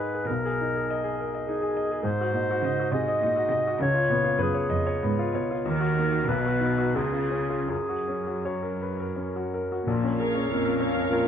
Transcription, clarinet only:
Already playing: B4
0.27 A#4
1.46 G#4
2.04 C5
2.92 D#5
3.82 C#5
4.42 G#4
5.67 A#4
6.29 B4
6.96 G#4
7.70 G#4
8.46 F#4
9.88 F4
10.20 G#4
10.52 A#4

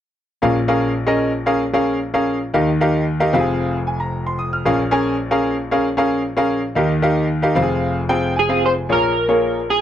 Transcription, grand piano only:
0.42 A#1 A#2 C#4 G#4 A#4 F5
0.68 C#4 G#4 A#4 F5
1.06 C#4 G#4 A#4 D#5
1.46 C#4 G#4 A#4 F5
1.73 C#4 G#4 A#4 F5
2.14 C#4 G#4 A#4 F5
2.54 D#2 D#3 D#4 G4 A#4 F5
2.81 D#4 G4 A#4 F5
3.20 D#4 G4 A#4 F5
3.33 F1 F2 C4 F4 G4 F5
3.40 G#4
3.87 G#5
4.00 A#5
4.27 C6
4.39 D#6
4.53 F6
4.65 A#1 A#2 C#4 G#4 A#4 F5
4.91 C#4 G#4 A#4 G#5
5.31 C#4 G#4 A#4 F5
5.71 C#4 G#4 A#4 F5
5.97 C#4 G#4 A#4 F5
6.37 C#4 G#4 A#4 F5
6.75 D#2 D#3 D#4 G4 A#4 F5
7.02 D#4 G4 A#4 F5
7.42 D#4 G4 A#4 F5
7.55 F1 F2 C4 F4 G4 F5
7.62 G#4
8.09 C4 F4 G#4 G5
8.36 G#5
8.49 C4 F4 G#4 F5
8.89 A#1 A#2 A#3 F4 G#4 C#5
9.28 A#3 F4 G#4 C#5

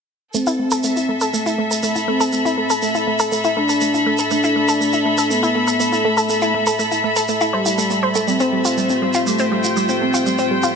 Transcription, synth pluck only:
0.34 A3
0.47 E4
0.59 A3
0.72 A4
0.84 A3
0.96 E4
1.09 A3
1.21 A4
1.33 A3
1.46 E4
1.58 A3
1.71 A4
1.83 A3
1.96 E4
2.08 A3
2.20 A4
2.33 A3
2.45 E4
2.57 A3
2.70 A4
2.82 A3
2.95 E4
3.07 A3
3.20 A4
3.32 A3
3.44 E4
3.57 A3
3.69 A4
3.81 A3
3.94 E4
4.06 A3
4.19 A4
4.31 A3
4.44 E4
4.56 A3
4.68 A4
4.81 A3
4.93 E4
5.05 A3
5.18 A4
5.30 A3
5.43 E4
5.55 A3
5.68 A4
5.80 A3
5.92 E4
6.05 A3
6.17 A4
6.29 A3
6.42 E4
6.54 A3
6.67 A4
6.79 A3
6.92 E4
7.04 A3
7.16 A4
7.29 A3
7.41 E4
7.53 C5
7.66 E4
7.78 A3
7.91 A3
8.03 C5
8.15 A3
8.28 G3
8.40 C4
8.52 G3
8.65 F4
8.77 G3
8.90 C4
9.02 G3
9.15 F4
9.27 G3
9.39 C4
9.52 G3
9.64 F4
9.76 G3
9.89 C4
10.01 A3
10.14 F4
10.26 G3
10.39 C4
10.51 G3
10.63 F4

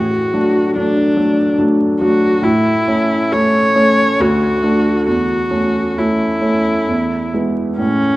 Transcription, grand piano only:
Already playing: A2
0.33 F#3 A3 D4
0.75 F#3 A3 D4
1.17 F#3 A3 D4
1.59 F#3 A3 D4
2.01 F#3 A3 D4
2.42 A2
2.88 A3 C#4
3.34 A3 C#4
3.75 A3 C#4
4.20 D2
4.63 A3 D4
5.07 E2
5.50 A3 C#4
5.98 A3 C#4
6.42 A3 C#4
6.88 E2
7.34 G#3 B3 E4
7.77 A2

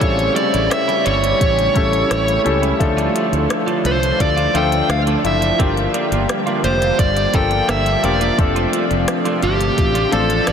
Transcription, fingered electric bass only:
0.01 A1
0.54 A1
1.06 G1
1.41 A1
1.76 A1
2.11 A1
2.46 C#2
2.80 D2
3.32 D2
3.85 C2
4.20 D2
4.54 D2
4.89 D2
5.24 F#1
5.59 G1
6.12 G1
6.64 F1
6.99 G1
7.34 G1
7.68 G1
8.03 E1
8.39 F1
8.91 F1
9.43 G1
9.78 A1
10.13 A1
10.48 A1

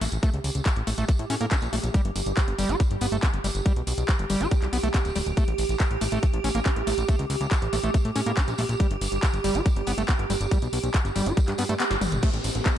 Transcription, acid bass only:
0.01 A3
0.23 A3
0.87 A3
0.98 A3
1.09 A3
1.30 C#4
1.41 A#3
1.51 C#4
1.73 A3
1.94 G3
2.59 G3
2.69 G4
2.80 G3
3.01 B3
3.12 A3
3.23 B3
3.44 G3
3.66 G3
4.30 G3
4.41 G4
4.51 G3
4.73 B3
4.83 A3
4.94 B3
5.16 G3
5.37 A3
6.01 A3
6.12 A3
6.23 A3
6.44 C#4
6.55 A#3
6.66 C#4
6.87 A3
7.09 A3
7.73 A3
7.84 A3
8.16 C#4
8.26 A#3
8.37 C#4
8.59 A3
8.80 G3
9.44 G3
9.55 G4
9.66 G3
9.87 B3
9.98 A3
10.09 B3
10.30 G3
10.51 G3
11.16 G3
11.26 G4
11.37 G3
11.59 B3
11.69 A3
11.80 B3
12.01 G3
12.23 A3

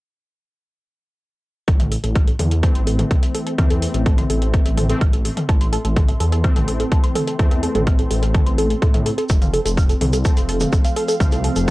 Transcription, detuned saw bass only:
1.68 A1
2.04 A1
2.39 E2
2.75 A1
3.11 C2
3.58 E2
3.94 A1
4.30 A1
4.66 A1
5.01 A1
5.49 A1
5.85 A1
6.20 E2
6.56 A1
6.92 C2
7.39 E2
7.75 A1
8.11 A1
8.47 A1
8.82 A2
9.30 F1
9.66 F1
10.01 C2
10.37 F1
10.73 A1
11.20 C2
11.56 F1

